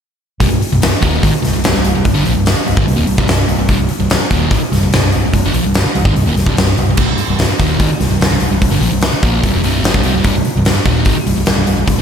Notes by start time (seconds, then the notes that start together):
0.40 C1 C2 G2, kick, open hi-hat
0.50 C1 C2 G2
0.61 muted distorted electric guitar stroke, muted fingered electric bass stroke, open hi-hat
0.72 C1 C2 G2
0.82 C1 C2 G2, snare, open hi-hat
0.92 muted distorted electric guitar stroke
1.01 D#1 D#2 A#2 D#3, kick, open hi-hat
1.22 G#1 G#2 D#3, kick, open hi-hat
1.32 muted distorted electric guitar stroke, muted fingered electric bass stroke
1.42 C1 C2 G2, snare, open hi-hat
1.53 C1 C2 G2
1.64 C1 C2 G2, snare, open hi-hat
1.74 C1 C2 G2
1.85 C1 C2 G2, open hi-hat
1.95 C1 C2 G2
2.05 C1 C2 G2, kick, open hi-hat
2.14 G1 G2 D3
2.25 A#1 A#2 F3, open hi-hat
2.34 C2 G2
2.39 C1
2.46 snare, open hi-hat
2.56 muted distorted electric guitar stroke, muted fingered electric bass stroke
2.66 C1 C2 G2, open hi-hat
2.76 G#1 G#2 D#3, kick
2.87 C1 C2 G2, open hi-hat
2.96 D#1 D#2 A#2
3.06 C1 C2 G2, open hi-hat
3.17 C1 C2 G2, kick
3.28 C1 C2 G2, snare, open hi-hat
3.48 C1 C2 G2, open hi-hat
3.58 C1 C2 G2
3.69 C1 C2 G2, kick, open hi-hat
3.79 C1 C2 G2
3.89 muted distorted electric guitar stroke, muted fingered electric bass stroke, open hi-hat
4.00 C1 C2 G2
4.10 C1 C2 G2, snare, open hi-hat
4.21 muted distorted electric guitar stroke
4.31 D#1 D#2 A#2 D#3, kick, open hi-hat
4.51 G#1 G#2 D#3, kick, open hi-hat
4.62 muted distorted electric guitar stroke
4.71 C1 C2 G2, snare, open hi-hat
4.83 C1 C2 G2
4.93 C1 C2 G2, snare, open hi-hat
5.03 C1 C2 G2
5.12 C1 C2 G2, open hi-hat
5.25 C1 C2 G2
5.33 C1 C2 G2, kick, open hi-hat
5.44 G1 G2 D3
5.54 A#1 A#2 F3, open hi-hat
5.64 C1 C2 G2
5.74 snare, open hi-hat
5.85 muted distorted electric guitar stroke
5.95 C1 C2 G2, open hi-hat
6.05 G#1 G#2 D#3, kick
6.15 C1 C2 G2, open hi-hat
6.26 D#1 D#2 A#2
6.35 C1 C2 G2, snare, open hi-hat
6.46 C1 C2 G2, kick
6.57 C1 C2 G2, snare, open hi-hat
6.76 C1 C2 G2, open hi-hat
6.87 C1 C2 G2
6.97 C1 C2 G2, kick, crash
7.08 C1 C2 G2
7.18 muted distorted electric guitar stroke, open hi-hat
7.28 C1 C2 G2
7.39 C1 C2 G2, snare, open hi-hat
7.51 muted distorted electric guitar stroke
7.60 D#1 D#2 A#2 D#3, kick, open hi-hat
7.80 G#1 G#2 D#3, kick, open hi-hat
7.90 muted distorted electric guitar stroke
8.00 C1 C2 G2, snare, open hi-hat
8.10 C1 C2 G2
8.20 C1 C2 G2, snare, open hi-hat
8.30 C1 C2 G2
8.40 C1 C2 G2, open hi-hat
8.50 C1 C2 G2
8.62 C1 C2 G2, kick, open hi-hat
8.71 G1 G2 D3
8.81 A#1 A#2 F3, open hi-hat
8.92 C1 C2 G2
9.01 snare, open hi-hat
9.13 muted distorted electric guitar stroke
9.23 A#1 A#2 F3 A#3, kick, open hi-hat
9.43 C1 C2 G2, kick, open hi-hat
9.54 F1 F2 C3
9.63 C1 C2 G2 C3, open hi-hat
9.83 G1 G2 D3, snare, open hi-hat
9.94 C1 C2 G2, kick
10.03 C2 C3 G3, open hi-hat
10.14 C1 C2 G2
10.24 C1 C2 G2, kick, open hi-hat
10.35 C1 C2 G2
10.45 muted distorted electric guitar stroke, open hi-hat
10.55 C1 C2 G2
10.65 C1 C2 G2, snare, open hi-hat
10.76 muted distorted electric guitar stroke
10.85 D#1 D#2 A#2 D#3, kick, open hi-hat
11.05 G#1 G#2 D#3, kick, open hi-hat
11.16 muted fingered electric bass stroke, muted distorted electric guitar stroke
11.27 C1 C2 G2, open hi-hat
11.37 C1 C2 G2
11.46 C1 C2 G2, snare, open hi-hat
11.56 C1 C2 G2
11.67 C1 C2 G2, open hi-hat
11.77 C1 C2 G2
11.86 C1 C2 G2, kick, open hi-hat
11.98 G1 G2